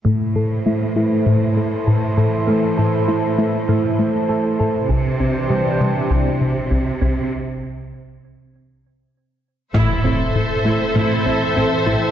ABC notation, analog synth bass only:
X:1
M:4/4
L:1/8
Q:1/4=99
K:Am
V:1 name="Analog synth bass" clef=bass
A,, A,, A, A, A,, A, A,, A,, | A,, A,, A, A, A,, A, A,, A,, | C,, C,, C, C, C,, C, C,, C,, | z8 |
A,, A,, A,, A, A,, A,, A,, A, |]